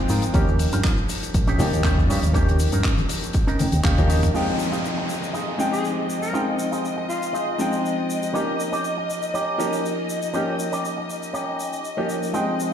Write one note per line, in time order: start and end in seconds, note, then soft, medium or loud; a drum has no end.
0.00 0.31 F3 loud
0.00 0.31 G#3 medium
0.00 0.32 C4 loud
0.00 0.32 D#4 medium
0.00 0.32 G5 loud
0.09 0.18 G#2 medium
0.09 0.23 D#4 medium
0.09 0.23 F4 medium
0.09 0.23 A#4 medium
0.09 open hi-hat loud
0.09 maracas medium
0.09 shaker medium
0.22 closed hi-hat medium
0.22 maracas soft
0.22 shaker medium
0.33 0.65 D#2 medium
0.33 1.56 F3 medium
0.33 1.56 A#3 medium
0.33 0.47 C#4 loud
0.33 1.57 C#4 medium
0.33 0.48 D#4 medium
0.33 1.57 D#4 medium
0.33 0.48 G4 loud
0.33 1.57 G4 loud
0.33 kick loud
0.33 closed hi-hat medium
0.33 maracas soft
0.33 shaker medium
0.48 maracas soft
0.59 muted clean electric guitar stroke soft
0.59 open hi-hat loud
0.59 maracas medium
0.59 shaker medium
0.72 0.80 G2 medium
0.72 0.91 C#4 medium
0.72 0.91 D#4 medium
0.72 0.91 F4 medium
0.72 closed hi-hat medium
0.72 shaker medium
0.72 maracas soft
0.84 kick loud
0.84 clap loud
0.84 closed hi-hat medium
0.84 maracas soft
0.84 shaker medium
0.98 maracas soft
1.09 muted clean electric guitar stroke soft
1.09 open hi-hat loud
1.09 maracas medium
1.09 shaker medium
1.22 muted clean electric guitar stroke soft
1.22 closed hi-hat medium
1.22 maracas soft
1.22 shaker medium
1.34 1.59 A#1 loud
1.34 kick loud
1.34 closed hi-hat medium
1.34 maracas medium
1.34 shaker medium
1.47 1.66 C#4 loud
1.47 1.66 D#4 loud
1.47 1.66 G4 loud
1.47 closed hi-hat medium
1.47 maracas soft
1.58 1.68 D#2 medium
1.58 2.31 F3 loud
1.58 2.31 A#3 medium
1.58 2.32 C#4 medium
1.58 2.32 D#4 loud
1.58 2.32 G4 loud
1.58 open hi-hat loud
1.58 low conga medium
1.58 maracas medium
1.58 shaker medium
1.73 2.10 D#2 loud
1.73 closed hi-hat medium
1.73 maracas soft
1.73 shaker medium
1.84 1.98 C#4 medium
1.84 1.98 D#4 medium
1.84 1.98 G4 medium
1.84 kick loud
1.84 clap loud
1.84 closed hi-hat medium
1.84 shaker soft
1.84 maracas medium
1.98 kick medium
1.98 maracas soft
2.09 2.18 G2 medium
2.09 2.23 C#4 medium
2.09 2.23 D#4 medium
2.09 2.23 G4 loud
2.09 open hi-hat loud
2.09 shaker medium
2.09 maracas medium
2.23 2.65 D#2 medium
2.23 closed hi-hat medium
2.23 maracas soft
2.23 shaker medium
2.33 3.56 F3 medium
2.33 3.56 A#3 medium
2.33 3.56 C#4 medium
2.33 2.48 C#4 loud
2.33 2.48 D#4 loud
2.33 3.57 D#4 medium
2.33 3.57 G4 loud
2.33 2.48 G4 loud
2.33 kick loud
2.33 closed hi-hat medium
2.33 shaker medium
2.33 maracas medium
2.48 closed hi-hat medium
2.48 maracas soft
2.59 muted clean electric guitar stroke soft
2.59 open hi-hat medium
2.59 shaker medium
2.59 maracas medium
2.72 2.80 G2 medium
2.72 2.91 C#4 medium
2.72 2.91 D#4 medium
2.72 2.91 A#4 medium
2.72 closed hi-hat medium
2.72 shaker medium
2.72 maracas soft
2.84 kick loud
2.84 clap loud
2.84 closed hi-hat medium
2.84 shaker medium
2.84 maracas medium
2.98 closed hi-hat medium
2.98 high conga medium
2.98 maracas soft
3.09 muted clean electric guitar stroke soft
3.09 open hi-hat loud
3.09 maracas loud
3.09 shaker medium
3.22 muted clean electric guitar stroke soft
3.22 closed hi-hat medium
3.22 maracas soft
3.22 shaker medium
3.33 kick loud
3.33 closed hi-hat medium
3.33 shaker soft
3.33 maracas medium
3.47 3.66 C#4 loud
3.47 3.66 D#4 loud
3.47 3.66 A#4 loud
3.47 closed hi-hat medium
3.47 maracas soft
3.59 3.83 G5 medium
3.59 open hi-hat medium
3.59 high conga medium
3.59 low conga medium
3.59 shaker medium
3.59 maracas medium
3.72 3.80 D#2 medium
3.72 closed hi-hat medium
3.72 maracas soft
3.72 shaker medium
3.83 4.28 D#2 medium
3.83 3.97 C#4 medium
3.83 3.98 D#4 medium
3.83 3.98 G4 medium
3.83 4.08 F5 medium
3.83 kick loud
3.83 clap loud
3.83 closed hi-hat medium
3.83 high tom medium
3.83 maracas medium
3.83 shaker soft
3.98 4.32 F3 medium
3.98 4.32 A#3 medium
3.98 4.32 C#4 medium
3.98 4.32 D#4 medium
3.98 4.32 G4 loud
3.98 kick medium
3.98 closed hi-hat medium
3.98 high tom medium
3.98 maracas soft
4.08 4.22 C#4 medium
4.08 4.23 D#4 medium
4.08 4.23 G4 loud
4.08 4.33 D#5 medium
4.08 open hi-hat loud
4.08 maracas medium
4.08 shaker medium
4.23 closed hi-hat medium
4.23 mid tom medium
4.23 maracas soft
4.23 shaker medium
4.34 5.56 F3 medium
4.34 5.57 G#3 medium
4.34 5.57 C4 medium
4.34 4.53 D#4 medium
4.34 5.57 D#4 medium
4.34 4.53 F4 medium
4.34 4.54 G#4 loud
4.34 12.34 D#5 medium
4.34 5.57 G5 medium
4.34 downlifter medium
4.34 shaker soft
4.59 shaker medium
4.72 4.84 D#4 medium
4.72 4.84 F4 medium
4.72 4.84 G4 medium
4.72 shaker medium
4.85 shaker soft
4.97 muted clean electric guitar stroke medium
5.08 muted clean electric guitar stroke soft
5.08 shaker medium
5.23 shaker soft
5.33 5.78 D#4 medium
5.33 5.78 F4 medium
5.33 5.79 G#4 medium
5.33 shaker soft
5.58 6.31 F3 medium
5.58 6.31 G#3 medium
5.58 6.31 C4 medium
5.58 6.32 D#4 medium
5.58 6.32 G5 loud
5.58 shaker medium
5.72 5.89 G#4 medium
5.72 shaker medium
5.85 shaker soft
6.10 shaker medium
6.22 6.39 A#4 medium
6.22 muted clean electric guitar stroke soft
6.22 shaker medium
6.33 7.56 F3 medium
6.33 7.56 G#3 medium
6.33 7.56 C4 medium
6.33 6.53 D#4 loud
6.33 7.57 D#4 medium
6.33 6.53 F4 medium
6.33 6.54 G#4 loud
6.33 7.57 G5 medium
6.33 shaker soft
6.59 shaker medium
6.72 6.84 D#4 medium
6.72 6.84 F4 medium
6.72 6.84 G#4 medium
6.72 shaker medium
6.85 shaker soft
6.97 muted clean electric guitar stroke medium
7.09 7.48 F4 medium
7.09 muted clean electric guitar stroke soft
7.09 shaker medium
7.23 shaker medium
7.33 7.78 D#4 medium
7.33 7.78 F4 medium
7.33 7.79 G#4 medium
7.33 shaker soft
7.58 8.31 F3 medium
7.58 8.31 G#3 medium
7.58 8.32 C4 medium
7.58 8.32 D#4 medium
7.58 8.32 G5 loud
7.58 shaker medium
7.73 shaker medium
7.86 shaker soft
8.10 shaker medium
8.22 muted clean electric guitar stroke soft
8.22 shaker soft
8.33 9.56 F3 medium
8.33 9.56 A#3 medium
8.33 8.53 C#4 loud
8.33 9.57 C#4 medium
8.33 8.53 D#4 medium
8.33 9.57 D#4 medium
8.33 8.54 G4 loud
8.33 9.57 G4 medium
8.33 shaker soft
8.60 shaker medium
8.72 8.84 C#4 medium
8.72 8.84 D#4 medium
8.72 8.85 G4 medium
8.72 shaker soft
8.84 shaker soft
8.97 muted clean electric guitar stroke medium
9.09 muted clean electric guitar stroke soft
9.09 shaker medium
9.22 shaker soft
9.34 9.78 C#4 medium
9.34 9.78 D#4 medium
9.34 9.79 G4 medium
9.34 shaker soft
9.58 10.31 F3 medium
9.58 10.31 A#3 medium
9.58 10.31 C#4 medium
9.58 10.32 D#4 medium
9.58 10.32 G4 loud
9.58 shaker medium
9.73 shaker medium
9.85 shaker soft
10.10 shaker medium
10.22 muted clean electric guitar stroke soft
10.22 shaker medium
10.33 11.56 F3 medium
10.33 11.56 A#3 medium
10.33 10.53 C#4 loud
10.33 11.57 C#4 medium
10.33 10.53 D#4 medium
10.33 11.57 D#4 medium
10.33 10.54 G4 loud
10.33 11.57 G4 medium
10.33 shaker soft
10.60 shaker medium
10.72 10.84 C#4 medium
10.72 10.84 D#4 medium
10.72 10.85 G4 medium
10.72 shaker medium
10.85 shaker medium
10.97 muted clean electric guitar stroke medium
11.09 muted clean electric guitar stroke soft
11.09 shaker medium
11.23 shaker medium
11.33 11.78 C#4 medium
11.33 11.78 D#4 medium
11.33 11.79 G4 medium
11.33 shaker soft
11.60 shaker medium
11.73 shaker soft
11.85 shaker soft
11.97 12.31 F3 medium
11.97 12.31 A#3 medium
11.97 12.31 C#4 medium
11.97 12.32 D#4 medium
11.97 12.32 G4 medium
12.10 shaker medium
12.22 muted clean electric guitar stroke soft
12.22 shaker medium
12.33 12.73 F3 medium
12.33 12.73 G#3 medium
12.33 12.73 C4 medium
12.33 12.53 D#4 loud
12.33 12.73 D#4 medium
12.33 12.53 F4 medium
12.33 12.54 G#4 loud
12.33 12.73 D#5 medium
12.33 12.73 G5 medium
12.33 shaker soft
12.60 shaker medium